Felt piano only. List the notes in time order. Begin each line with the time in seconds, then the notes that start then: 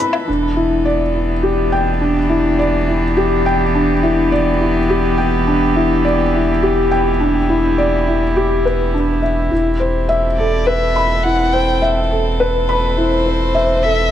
Already playing: E4 A4 B4 E5
0.00 B5
0.28 D4
0.56 E4
0.85 D5
1.14 E4
1.43 G4
1.72 G5
2.01 D4
2.29 E4
2.59 D5
2.88 E4
3.17 G4
3.46 G5
3.75 D4
4.03 E4
4.32 D5
4.61 E4
4.90 G4
5.18 G5
5.47 D4
5.76 E4
6.05 D5
6.34 E4
6.63 G4
6.91 G5
7.20 D4
7.49 E4
7.78 D5
8.07 E4
8.36 G4
8.65 B4
8.94 D4
9.22 E5
9.51 E4
9.80 C5
10.09 E5
10.38 A4
10.67 B4
10.96 B5
11.25 E4
11.53 C5
11.82 E5
12.11 A4
12.40 B4
12.69 B5
12.97 E4
13.26 C5
13.55 E5
13.84 A4